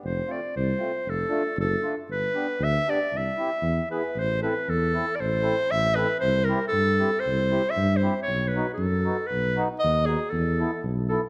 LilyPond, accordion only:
\new Staff \with { instrumentName = "Accordion" } { \time 2/4 \key f \lydian \tempo 4 = 117 r8 <a c' f'>8 r8 <a c' f'>8 | r8 <a d' f'>8 r8 <a d' f'>8 | r8 <b d' g'>8 r8 <b d' g'>8 | r8 <c' e' g'>8 r8 <b e' gis'>8 |
\key c \major r8 <c' e' a'>8 r8 <c' e' a'>8 | r8 <c' e' a'>8 r8 <c' e' a'>8 | r8 <c' e' g'>8 r8 <c' e' g'>8 | r8 <c' e' g'>8 r8 <c' e' g'>8 |
r8 <b dis' fis'>8 r8 <b dis' fis'>8 | r8 <b dis' fis'>8 r8 <b dis' fis'>8 | r8 <b e' a'>8 r8 <b e' a'>8 | }